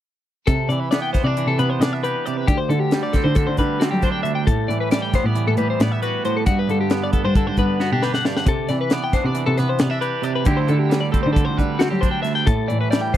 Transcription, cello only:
0, 0, Header, 1, 2, 480
1, 0, Start_track
1, 0, Tempo, 444115
1, 514, Time_signature, 9, 3, 24, 8
1, 14235, End_track
2, 0, Start_track
2, 0, Title_t, "Cello"
2, 0, Program_c, 0, 42
2, 510, Note_on_c, 0, 48, 71
2, 603, Note_off_c, 0, 48, 0
2, 739, Note_on_c, 0, 48, 73
2, 1199, Note_off_c, 0, 48, 0
2, 1333, Note_on_c, 0, 48, 85
2, 1431, Note_off_c, 0, 48, 0
2, 1582, Note_on_c, 0, 48, 79
2, 1677, Note_off_c, 0, 48, 0
2, 1711, Note_on_c, 0, 48, 80
2, 1893, Note_off_c, 0, 48, 0
2, 1939, Note_on_c, 0, 48, 86
2, 2126, Note_off_c, 0, 48, 0
2, 2678, Note_on_c, 0, 50, 79
2, 2857, Note_off_c, 0, 50, 0
2, 2908, Note_on_c, 0, 50, 89
2, 3364, Note_off_c, 0, 50, 0
2, 3506, Note_on_c, 0, 50, 82
2, 3599, Note_off_c, 0, 50, 0
2, 3749, Note_on_c, 0, 50, 73
2, 3840, Note_off_c, 0, 50, 0
2, 3875, Note_on_c, 0, 50, 84
2, 4146, Note_off_c, 0, 50, 0
2, 4238, Note_on_c, 0, 54, 80
2, 4417, Note_off_c, 0, 54, 0
2, 4835, Note_on_c, 0, 45, 73
2, 4924, Note_off_c, 0, 45, 0
2, 5061, Note_on_c, 0, 45, 76
2, 5520, Note_off_c, 0, 45, 0
2, 5662, Note_on_c, 0, 45, 86
2, 5756, Note_off_c, 0, 45, 0
2, 5907, Note_on_c, 0, 45, 79
2, 5999, Note_off_c, 0, 45, 0
2, 6019, Note_on_c, 0, 45, 83
2, 6205, Note_off_c, 0, 45, 0
2, 6267, Note_on_c, 0, 45, 91
2, 6450, Note_off_c, 0, 45, 0
2, 6989, Note_on_c, 0, 43, 78
2, 7171, Note_off_c, 0, 43, 0
2, 7217, Note_on_c, 0, 43, 81
2, 7678, Note_off_c, 0, 43, 0
2, 7818, Note_on_c, 0, 43, 85
2, 7914, Note_off_c, 0, 43, 0
2, 8071, Note_on_c, 0, 43, 77
2, 8163, Note_off_c, 0, 43, 0
2, 8186, Note_on_c, 0, 43, 80
2, 8461, Note_off_c, 0, 43, 0
2, 8563, Note_on_c, 0, 47, 75
2, 8741, Note_off_c, 0, 47, 0
2, 9142, Note_on_c, 0, 48, 81
2, 9237, Note_off_c, 0, 48, 0
2, 9392, Note_on_c, 0, 48, 79
2, 9848, Note_off_c, 0, 48, 0
2, 9987, Note_on_c, 0, 48, 84
2, 10081, Note_off_c, 0, 48, 0
2, 10234, Note_on_c, 0, 48, 86
2, 10325, Note_off_c, 0, 48, 0
2, 10356, Note_on_c, 0, 48, 80
2, 10537, Note_off_c, 0, 48, 0
2, 10598, Note_on_c, 0, 48, 82
2, 10779, Note_off_c, 0, 48, 0
2, 11309, Note_on_c, 0, 50, 84
2, 11494, Note_off_c, 0, 50, 0
2, 11555, Note_on_c, 0, 50, 82
2, 12011, Note_off_c, 0, 50, 0
2, 12169, Note_on_c, 0, 50, 89
2, 12255, Note_off_c, 0, 50, 0
2, 12410, Note_on_c, 0, 50, 73
2, 12496, Note_off_c, 0, 50, 0
2, 12518, Note_on_c, 0, 50, 76
2, 12790, Note_off_c, 0, 50, 0
2, 12871, Note_on_c, 0, 54, 76
2, 13055, Note_off_c, 0, 54, 0
2, 13470, Note_on_c, 0, 45, 82
2, 13563, Note_off_c, 0, 45, 0
2, 13731, Note_on_c, 0, 45, 78
2, 14181, Note_off_c, 0, 45, 0
2, 14235, End_track
0, 0, End_of_file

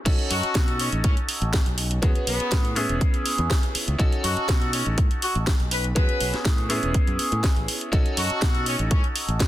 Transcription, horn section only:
0, 0, Header, 1, 2, 480
1, 0, Start_track
1, 0, Tempo, 491803
1, 58, Time_signature, 4, 2, 24, 8
1, 9249, End_track
2, 0, Start_track
2, 0, Title_t, "Horn section"
2, 0, Program_c, 0, 61
2, 297, Note_on_c, 0, 66, 95
2, 754, Note_off_c, 0, 66, 0
2, 775, Note_on_c, 0, 61, 87
2, 894, Note_off_c, 0, 61, 0
2, 1013, Note_on_c, 0, 61, 90
2, 1133, Note_off_c, 0, 61, 0
2, 2215, Note_on_c, 0, 59, 93
2, 2696, Note_off_c, 0, 59, 0
2, 4138, Note_on_c, 0, 66, 93
2, 4595, Note_off_c, 0, 66, 0
2, 4617, Note_on_c, 0, 61, 90
2, 4735, Note_off_c, 0, 61, 0
2, 5100, Note_on_c, 0, 66, 93
2, 5217, Note_off_c, 0, 66, 0
2, 5583, Note_on_c, 0, 71, 91
2, 5698, Note_off_c, 0, 71, 0
2, 5825, Note_on_c, 0, 71, 99
2, 6187, Note_off_c, 0, 71, 0
2, 7974, Note_on_c, 0, 66, 93
2, 8433, Note_off_c, 0, 66, 0
2, 8459, Note_on_c, 0, 61, 92
2, 8576, Note_off_c, 0, 61, 0
2, 8698, Note_on_c, 0, 61, 91
2, 8816, Note_off_c, 0, 61, 0
2, 9249, End_track
0, 0, End_of_file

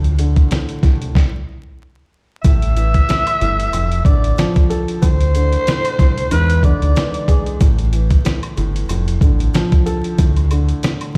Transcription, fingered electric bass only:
0, 0, Header, 1, 2, 480
1, 0, Start_track
1, 0, Key_signature, 0, "minor"
1, 0, Tempo, 645161
1, 1818, Time_signature, 4, 2, 24, 8
1, 8314, End_track
2, 0, Start_track
2, 0, Title_t, "Fingered electric bass"
2, 0, Program_c, 0, 33
2, 0, Note_on_c, 0, 38, 102
2, 288, Note_off_c, 0, 38, 0
2, 618, Note_on_c, 0, 36, 89
2, 813, Note_off_c, 0, 36, 0
2, 1820, Note_on_c, 0, 33, 101
2, 2208, Note_off_c, 0, 33, 0
2, 2541, Note_on_c, 0, 31, 88
2, 2734, Note_off_c, 0, 31, 0
2, 2780, Note_on_c, 0, 29, 104
2, 2974, Note_off_c, 0, 29, 0
2, 3013, Note_on_c, 0, 33, 90
2, 3210, Note_off_c, 0, 33, 0
2, 3741, Note_on_c, 0, 38, 104
2, 4129, Note_off_c, 0, 38, 0
2, 4458, Note_on_c, 0, 36, 92
2, 4653, Note_off_c, 0, 36, 0
2, 4700, Note_on_c, 0, 40, 105
2, 5003, Note_off_c, 0, 40, 0
2, 5075, Note_on_c, 0, 38, 93
2, 5160, Note_off_c, 0, 38, 0
2, 5661, Note_on_c, 0, 33, 110
2, 6049, Note_off_c, 0, 33, 0
2, 6380, Note_on_c, 0, 31, 88
2, 6574, Note_off_c, 0, 31, 0
2, 6620, Note_on_c, 0, 29, 103
2, 6814, Note_off_c, 0, 29, 0
2, 6853, Note_on_c, 0, 33, 95
2, 7050, Note_off_c, 0, 33, 0
2, 7580, Note_on_c, 0, 38, 105
2, 7968, Note_off_c, 0, 38, 0
2, 8314, End_track
0, 0, End_of_file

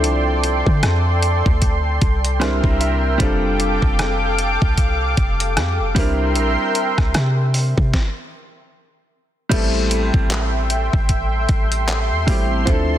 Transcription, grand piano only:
0, 0, Header, 1, 2, 480
1, 0, Start_track
1, 0, Tempo, 789474
1, 24, Time_signature, 4, 2, 24, 8
1, 7892, End_track
2, 0, Start_track
2, 0, Title_t, "Grand piano"
2, 0, Program_c, 0, 0
2, 0, Control_c, 0, 64, 127
2, 0, Note_on_c, 0, 53, 72
2, 0, Note_on_c, 0, 60, 63
2, 0, Note_on_c, 0, 62, 65
2, 0, Note_on_c, 0, 64, 64
2, 0, Note_on_c, 0, 69, 82
2, 1433, Note_off_c, 0, 53, 0
2, 1436, Note_off_c, 0, 60, 0
2, 1440, Note_off_c, 0, 62, 0
2, 1443, Note_off_c, 0, 64, 0
2, 1447, Note_off_c, 0, 69, 0
2, 1457, Note_on_c, 0, 55, 70
2, 1460, Note_on_c, 0, 60, 68
2, 1464, Note_on_c, 0, 62, 64
2, 1464, Note_on_c, 0, 84, 68
2, 1468, Note_on_c, 0, 64, 71
2, 1469, Note_on_c, 0, 70, 80
2, 1472, Control_c, 0, 64, 0
2, 1572, Control_c, 0, 64, 127
2, 1688, Note_off_c, 0, 84, 0
2, 1704, Note_on_c, 0, 76, 67
2, 1923, Note_off_c, 0, 55, 0
2, 1928, Note_off_c, 0, 76, 0
2, 1930, Note_off_c, 0, 60, 0
2, 1932, Note_on_c, 0, 55, 74
2, 1937, Note_off_c, 0, 62, 0
2, 1940, Note_on_c, 0, 60, 72
2, 1946, Note_off_c, 0, 64, 0
2, 1946, Note_on_c, 0, 62, 72
2, 1947, Note_off_c, 0, 70, 0
2, 1952, Control_c, 0, 64, 0
2, 1954, Note_on_c, 0, 65, 68
2, 1959, Note_on_c, 0, 69, 88
2, 2059, Control_c, 0, 64, 127
2, 3594, Note_off_c, 0, 55, 0
2, 3598, Note_off_c, 0, 60, 0
2, 3601, Note_off_c, 0, 62, 0
2, 3605, Note_off_c, 0, 65, 0
2, 3608, Note_off_c, 0, 69, 0
2, 3616, Note_on_c, 0, 55, 71
2, 3622, Note_on_c, 0, 60, 64
2, 3628, Note_on_c, 0, 62, 70
2, 3633, Control_c, 0, 64, 0
2, 3635, Note_on_c, 0, 64, 64
2, 3642, Note_on_c, 0, 70, 86
2, 3736, Control_c, 0, 64, 127
2, 4796, Note_off_c, 0, 55, 0
2, 4799, Note_off_c, 0, 60, 0
2, 4802, Note_off_c, 0, 62, 0
2, 4806, Note_off_c, 0, 64, 0
2, 4810, Note_off_c, 0, 70, 0
2, 4832, Control_c, 0, 64, 0
2, 5772, Note_on_c, 0, 55, 76
2, 5778, Note_on_c, 0, 57, 72
2, 5785, Note_on_c, 0, 59, 55
2, 5792, Note_on_c, 0, 64, 67
2, 5799, Note_on_c, 0, 69, 90
2, 5825, Note_on_c, 0, 60, 68
2, 5831, Note_off_c, 0, 59, 0
2, 5887, Control_c, 0, 64, 127
2, 7434, Note_off_c, 0, 55, 0
2, 7437, Note_off_c, 0, 57, 0
2, 7444, Note_off_c, 0, 64, 0
2, 7447, Note_off_c, 0, 69, 0
2, 7455, Note_off_c, 0, 60, 0
2, 7458, Note_on_c, 0, 55, 57
2, 7460, Note_on_c, 0, 57, 49
2, 7465, Note_on_c, 0, 60, 52
2, 7468, Note_on_c, 0, 64, 53
2, 7472, Note_on_c, 0, 67, 63
2, 7691, Note_off_c, 0, 60, 0
2, 7693, Note_on_c, 0, 53, 76
2, 7700, Note_on_c, 0, 60, 74
2, 7701, Note_off_c, 0, 55, 0
2, 7702, Note_off_c, 0, 57, 0
2, 7704, Note_off_c, 0, 64, 0
2, 7706, Note_on_c, 0, 62, 73
2, 7708, Note_off_c, 0, 67, 0
2, 7712, Control_c, 0, 64, 0
2, 7714, Note_on_c, 0, 64, 74
2, 7720, Note_on_c, 0, 69, 87
2, 7821, Control_c, 0, 64, 127
2, 7892, Note_off_c, 0, 53, 0
2, 7892, Note_off_c, 0, 60, 0
2, 7892, Note_off_c, 0, 62, 0
2, 7892, Note_off_c, 0, 64, 0
2, 7892, Note_off_c, 0, 69, 0
2, 7892, End_track
0, 0, End_of_file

